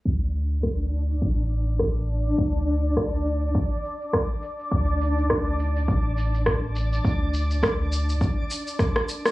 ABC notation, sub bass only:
X:1
M:4/4
L:1/8
Q:"Swing 16ths" 1/4=103
K:Cmix
V:1 name="Sub bass" clef=bass
D,,2 D,,2 A,,,4 | D,,2 D,,2 z4 | D,,2 D,,2 A,,,4 | D,,2 D,,2 z4 |]